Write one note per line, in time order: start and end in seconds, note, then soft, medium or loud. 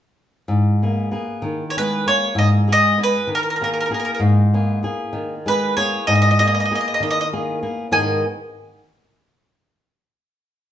0.48 1.10 G#2 medium
0.82 1.10 A#3 soft
0.82 1.10 B3 soft
0.82 1.11 G#4 soft
1.11 1.63 A#3 soft
1.11 1.63 B3 soft
1.11 1.64 G#4 soft
1.42 2.04 D#3 medium
1.70 1.77 C#5 medium
1.77 2.24 G#3 soft
1.77 2.05 B3 soft
1.77 2.06 G#4 soft
1.77 2.07 B4 medium
2.06 2.57 A#3 soft
2.06 2.57 B3 soft
2.06 2.57 G#4 soft
2.06 2.34 C#5 medium
2.35 2.96 G#2 medium
2.35 2.47 D#5 medium
2.68 3.15 G#3 soft
2.68 2.97 B3 soft
2.68 2.97 G#4 soft
2.73 2.98 D#5 medium
2.98 3.49 B3 soft
2.98 3.49 G#4 soft
3.03 3.29 B4 medium
3.27 3.88 D#3 medium
3.35 3.39 A#4 medium
3.43 3.47 A#4 soft
3.50 3.55 A#4 soft
3.56 3.61 A#4 soft
3.61 3.88 A#3 soft
3.61 3.89 B3 soft
3.61 3.90 G#4 soft
3.61 3.68 A#4 soft
3.74 3.77 A#4 soft
3.81 3.84 A#4 soft
3.86 4.40 A#3 soft
3.86 3.90 A#4 soft
3.91 4.41 B3 soft
3.91 4.42 G#4 soft
3.91 3.98 A#4 soft
4.00 4.04 A#4 soft
4.05 4.10 A#4 soft
4.15 4.18 A#4 soft
4.20 4.81 G#2 medium
4.54 4.81 A#3 soft
4.54 4.82 B3 soft
4.54 4.83 G#4 soft
4.83 5.33 A#3 soft
4.83 5.33 B3 soft
4.83 5.34 G#4 soft
5.13 5.74 D#3 medium
5.46 5.94 G#3 soft
5.46 5.76 B3 soft
5.46 5.76 G#4 soft
5.46 5.76 B4 medium
5.76 6.27 A#3 soft
5.76 6.27 B3 soft
5.76 6.28 G#4 soft
5.76 6.04 C#5 medium
6.07 6.68 G#2 medium
6.07 6.14 D#5 medium
6.15 6.21 D#5 medium
6.22 6.29 D#5 medium
6.31 6.38 D#5 medium
6.39 6.70 A#3 soft
6.39 6.70 B3 soft
6.39 6.70 G#4 soft
6.39 6.45 D#5 medium
6.47 6.53 D#5 medium
6.54 6.59 D#5 medium
6.60 6.64 D#5 soft
6.66 6.72 D#5 soft
6.71 7.21 A#3 soft
6.71 7.21 B3 soft
6.71 7.21 G#4 soft
6.75 6.80 D#5 medium
6.81 6.87 D#5 soft
6.88 6.93 D#5 soft
6.94 7.01 D#5 medium
7.00 7.61 D#3 medium
7.00 7.09 D#5 soft
7.11 7.18 D#5 medium
7.21 7.27 D#5 medium
7.33 7.61 A#3 soft
7.33 7.62 B3 soft
7.33 7.61 G#4 soft
7.63 7.87 A#3 soft
7.63 7.87 B3 soft
7.63 7.86 G#4 soft
7.91 8.23 G#2 medium
7.91 8.23 D#3 soft
7.91 8.23 B3 medium
7.91 8.24 G#4 medium
7.91 8.24 A#4 medium
7.91 8.24 D#5 medium
7.91 8.24 G#5 medium